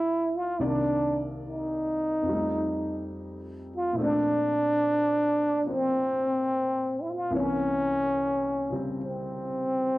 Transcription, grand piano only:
0.00 0.56 D2 soft
0.00 0.57 D3 soft
0.00 0.58 F3 soft
0.00 0.60 C4 soft
0.00 0.61 E5 soft
0.59 2.27 C2 soft
0.59 2.28 C3 soft
0.59 2.28 D#3 soft
0.59 2.28 A#3 soft
0.59 2.28 D5 soft
2.23 3.94 F2 soft
2.23 3.94 F3 soft
2.28 3.97 G3 soft
2.28 3.97 A3 soft
2.34 4.00 D#4 soft
3.93 7.30 A#2 soft
3.93 5.64 F3 soft
3.98 7.33 A3 soft
3.98 5.67 C4 soft
4.04 7.36 D4 medium
5.66 7.32 F3 soft
5.66 7.33 A#3 soft
5.66 7.34 C4 soft
7.31 9.98 C2 soft
7.31 9.98 C3 soft
7.31 9.98 E3 soft
7.31 9.98 A#3 soft
7.35 9.98 C#5 soft
8.70 9.98 C#3 soft
8.70 9.98 G3 soft
8.70 9.98 C4 soft

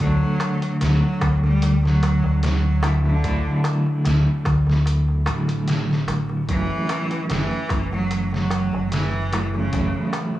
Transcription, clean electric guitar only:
0.00 2.79 D3 medium
0.00 2.80 A3 medium
0.00 2.81 D4 medium
0.00 2.80 F#4 medium
2.84 3.20 D3 medium
2.84 3.20 F#3 medium
2.84 3.20 A3 medium
2.84 3.21 E4 medium
3.23 5.22 D3 medium
3.23 5.22 F#3 medium
3.23 5.23 A3 medium
3.23 5.24 E4 medium
5.26 6.44 D3 medium
5.26 6.44 F#3 medium
5.26 6.45 A3 medium
5.26 6.45 E4 medium
6.47 9.27 E3 medium
6.47 9.28 F#3 medium
6.47 9.29 A3 medium
6.47 9.29 C#4 medium
9.32 9.69 E3 medium
9.32 9.69 F#3 medium
9.32 9.69 A3 medium
9.32 9.69 E4 medium
9.72 10.40 E3 medium
9.72 10.40 F#3 medium
9.72 10.40 A3 medium
9.72 10.40 E4 medium

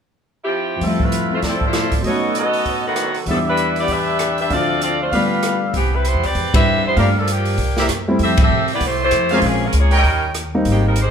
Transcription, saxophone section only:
0.44 0.82 F3 medium
0.44 0.82 C4 medium
0.44 0.81 E4 medium
0.44 0.82 G4 medium
0.86 1.02 F3 medium
0.86 1.02 C4 medium
0.86 1.02 E4 medium
0.86 1.02 A4 medium
1.04 1.33 A3 medium
1.04 1.33 E4 medium
1.04 1.33 F4 medium
1.04 1.33 B4 medium
1.35 1.40 A3 medium
1.35 1.40 E4 medium
1.35 1.40 F4 medium
1.35 1.40 C5 medium
1.47 1.63 F3 medium
1.47 1.63 C4 medium
1.47 1.63 E4 medium
1.47 1.63 A4 medium
1.65 1.94 A3 medium
1.65 1.95 E4 medium
1.65 1.94 F4 medium
1.65 1.94 C5 medium
2.07 2.34 B3 medium
2.07 2.35 F#4 medium
2.07 2.34 A4 medium
2.07 2.35 C#5 medium
2.38 2.83 B3 medium
2.38 2.83 F#4 medium
2.38 2.83 A4 medium
2.38 2.83 D#5 medium
2.87 3.17 D#3 medium
2.87 3.17 A3 medium
2.87 3.17 B3 medium
2.87 3.16 F#4 medium
3.30 3.38 F3 medium
3.30 3.38 B3 medium
3.30 3.39 D4 medium
3.30 3.38 A4 medium
3.49 3.76 G3 medium
3.49 3.76 D4 medium
3.49 3.76 E4 medium
3.49 3.76 B4 medium
3.80 3.91 B3 medium
3.80 3.91 E4 medium
3.80 3.91 G4 medium
3.80 3.91 D5 medium
3.92 4.39 D4 medium
3.92 4.39 G4 medium
3.92 4.39 B4 medium
3.92 4.39 E5 medium
4.40 4.51 D4 medium
4.40 4.51 G4 medium
4.40 4.51 B4 medium
4.40 4.51 E5 medium
4.53 4.81 C4 medium
4.53 4.81 F4 medium
4.53 4.81 A4 medium
4.53 4.81 D5 medium
4.82 4.99 C4 medium
4.82 4.99 F4 medium
4.82 4.99 A4 medium
4.82 4.99 D5 medium
5.02 5.13 A3 medium
5.02 5.12 D4 medium
5.02 5.12 F4 medium
5.02 5.13 C5 medium
5.14 5.59 G3 medium
5.14 5.59 D4 medium
5.14 5.59 F4 medium
5.14 5.59 B4 medium
5.75 5.92 E3 medium
5.75 5.92 B3 medium
5.75 5.92 C4 medium
5.75 5.92 G4 medium
5.95 6.06 G3 medium
5.95 6.06 C4 medium
5.95 6.06 E4 medium
5.95 6.06 B4 medium
6.07 6.24 G3 medium
6.07 6.24 B3 medium
6.07 6.24 E4 medium
6.07 6.24 C5 medium
6.25 6.54 C4 medium
6.25 6.54 G4 medium
6.25 6.55 B4 medium
6.25 6.55 D5 medium
6.55 6.83 C4 medium
6.55 6.83 G4 medium
6.55 6.83 B4 medium
6.55 6.83 E5 loud
6.87 6.97 G3 medium
6.87 6.97 B3 medium
6.87 6.98 E4 medium
6.87 6.97 C5 medium
6.98 7.15 G3 medium
6.98 7.15 D4 medium
6.98 7.15 F4 medium
6.98 7.15 A#4 medium
7.18 7.29 F3 medium
7.18 7.28 A#3 medium
7.18 7.29 D4 medium
7.18 7.28 A4 medium
7.31 7.60 F3 medium
7.31 7.91 A#3 medium
7.31 7.91 D4 medium
7.31 7.91 G4 medium
8.23 8.39 C4 medium
8.23 8.39 G4 medium
8.23 8.39 A4 medium
8.23 8.39 E5 medium
8.42 8.69 C4 medium
8.42 8.69 G4 medium
8.42 8.69 A4 medium
8.42 8.69 E5 medium
8.73 8.83 B3 medium
8.73 8.83 E4 medium
8.73 8.83 G4 medium
8.73 8.83 D5 medium
8.85 9.02 A3 medium
8.85 9.02 E4 medium
8.85 9.02 G4 medium
8.85 9.02 C5 medium
9.04 9.31 A3 medium
9.04 9.31 E4 medium
9.04 9.31 G4 medium
9.04 9.31 C5 loud
9.34 9.44 A3 medium
9.34 9.45 E4 medium
9.34 9.44 G4 medium
9.34 9.44 C5 medium
9.46 9.63 F3 medium
9.46 9.63 A#3 medium
9.46 9.63 C#4 medium
9.46 9.63 G#4 medium
9.66 9.76 G#3 medium
9.66 9.76 C#4 medium
9.66 9.76 F4 medium
9.66 9.76 A#4 medium
9.79 9.95 A#3 medium
9.79 9.95 F4 medium
9.79 9.95 G#4 medium
9.79 9.95 C#5 medium
9.96 10.23 G3 medium
9.96 10.23 C#4 medium
9.96 10.23 D#4 medium
9.96 10.23 A#4 medium
10.70 10.86 D#3 medium
10.70 10.85 G#3 medium
10.70 10.86 C4 medium
10.70 10.86 G4 medium
10.88 10.97 G3 medium
10.88 10.98 C4 medium
10.88 10.98 D#4 medium
10.88 10.98 A#4 medium
11.02 11.11 G#3 medium
11.02 11.11 D#4 medium
11.02 11.11 G4 medium
11.02 11.11 C5 medium

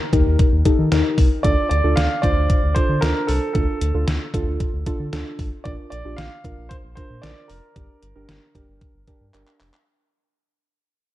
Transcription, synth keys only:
0.13 0.49 D#4 medium
0.13 0.49 G4 medium
0.13 0.49 A#4 loud
0.66 0.83 D#4 medium
0.66 0.83 G4 medium
0.66 0.83 A4 loud
0.92 1.28 D#4 medium
0.92 1.28 G4 medium
0.92 1.28 A#4 loud
1.44 1.71 D4 medium
1.44 1.71 F4 medium
1.44 1.71 A4 medium
1.84 2.11 D4 medium
1.84 2.11 F4 medium
1.84 2.11 A4 medium
2.23 2.59 D4 medium
2.23 2.59 F4 medium
2.23 2.59 C5 medium
2.76 2.94 D4 medium
2.76 2.94 F4 medium
2.76 2.94 A4 medium
3.02 3.38 D4 medium
3.02 3.38 F4 medium
3.02 3.38 A4 medium
3.55 3.82 D4 medium
3.55 3.82 F4 medium
3.55 3.82 A4 medium
3.94 4.21 D4 medium
3.94 4.21 F4 medium
3.94 4.21 A4 medium
4.34 4.70 D4 medium
4.34 4.70 F4 medium
4.34 4.70 A4 loud
4.87 5.05 D4 medium
4.87 5.05 F4 medium
4.87 5.05 A4 loud
5.13 5.49 D4 loud
5.13 5.49 F4 medium
5.13 5.49 A4 loud
5.66 5.92 D4 medium
5.66 5.92 F4 medium
5.66 5.92 A#4 medium
6.05 6.32 D4 medium
6.05 6.32 F4 medium
6.05 6.32 G4 medium
6.45 6.80 D4 medium
6.45 6.80 F4 medium
6.45 6.80 A#4 medium
6.97 7.15 D4 medium
6.97 7.15 F4 medium
6.97 7.15 A#4 medium
7.23 7.59 D4 medium
7.23 7.59 F4 medium
7.23 7.59 A#4 medium
7.76 8.03 D4 medium
7.76 8.03 G4 medium
7.76 8.03 A#4 medium
8.16 8.42 D4 medium
8.16 8.42 G4 medium
8.16 8.42 A#4 loud
8.55 8.91 D4 medium
8.55 8.91 G4 medium
8.55 8.91 A#4 loud
9.08 9.26 D4 medium
9.08 9.26 G4 medium
9.08 9.26 A#4 loud
9.34 9.70 D4 medium
9.34 9.70 G4 medium
9.34 9.70 A#4 loud

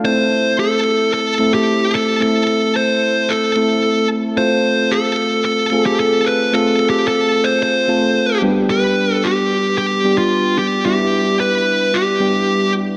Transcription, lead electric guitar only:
0.05 0.55 C5 medium
0.59 1.13 A4 medium
1.14 1.51 A4 medium
1.54 1.95 G4 medium
1.95 2.21 A4 medium
2.23 2.72 A4 medium
2.76 3.31 C5 medium
3.30 4.07 A4 medium
4.38 4.93 C5 loud
4.91 5.44 A4 medium
5.45 5.86 A4 medium
5.86 5.99 G4 medium
6.00 6.27 A4 medium
6.26 6.54 B4 medium
6.54 6.89 A4 medium
6.90 7.07 G4 medium
7.08 7.45 A4 medium
7.44 7.62 C5 medium
7.63 8.39 C5 medium
8.71 9.15 B4 loud
9.15 9.26 A4 loud
9.24 9.77 G4 medium
9.78 10.16 G4 medium
10.18 10.56 F4 medium
10.59 10.85 G4 medium
10.86 11.36 G4 medium
11.40 11.96 B4 medium
11.94 12.71 G4 medium

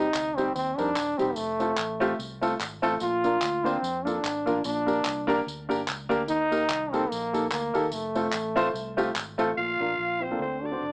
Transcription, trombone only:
0.00 0.38 D#4 loud
0.36 0.55 C4 loud
0.55 0.79 C4 loud
0.77 1.19 D4 loud
1.18 1.37 C4 medium
1.35 2.18 A3 loud
3.02 3.68 F4 loud
3.66 4.07 C4 loud
4.05 4.65 D4 medium
4.65 5.43 D4 loud
6.29 6.93 D#4 loud
6.92 7.11 C4 loud
7.10 7.50 A#3 loud
7.51 7.94 A#3 medium
7.93 9.16 A3 medium
9.57 10.23 F4 medium
10.21 10.64 C4 medium
10.62 10.92 D4 medium

